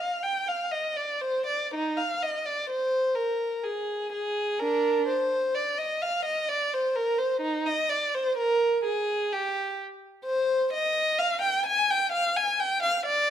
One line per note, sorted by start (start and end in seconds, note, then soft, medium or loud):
0.00 0.23 F5 medium
0.23 0.47 G5 medium
0.48 0.71 F5 medium
0.72 0.95 D#5 medium
0.97 1.21 D5 medium
1.21 1.46 C5 medium
1.47 1.71 D5 medium
1.75 1.98 D#4 medium
1.97 2.22 F5 medium
2.23 2.46 D#5 medium
2.46 2.70 D5 medium
2.70 3.16 C5 medium
3.15 3.64 A#4 medium
3.64 4.12 G#4 medium
4.13 4.60 G#4 medium
4.60 5.04 D4 medium
4.60 5.08 A#4 medium
5.08 5.54 C5 medium
5.55 5.78 D5 medium
5.79 6.02 D#5 medium
6.02 6.25 F5 medium
6.26 6.48 D#5 medium
6.49 6.72 D5 medium
6.74 6.96 C5 medium
6.96 7.19 A#4 medium
7.19 7.42 C5 medium
7.42 7.65 D#4 medium
7.66 7.89 D#5 medium
7.90 8.13 D5 medium
8.15 8.37 C5 medium
8.38 8.83 A#4 medium
8.85 9.30 G#4 medium
9.33 9.79 G4 medium
10.25 10.68 C5 medium
10.74 11.19 D#5 medium
11.19 11.42 F5 medium
11.42 11.65 G5 medium
11.66 11.89 G#5 medium
11.91 12.13 G5 medium
12.13 12.36 F5 medium
12.36 12.60 G#5 medium
12.60 12.84 G5 medium
12.83 13.07 F5 medium
13.06 13.30 D5 medium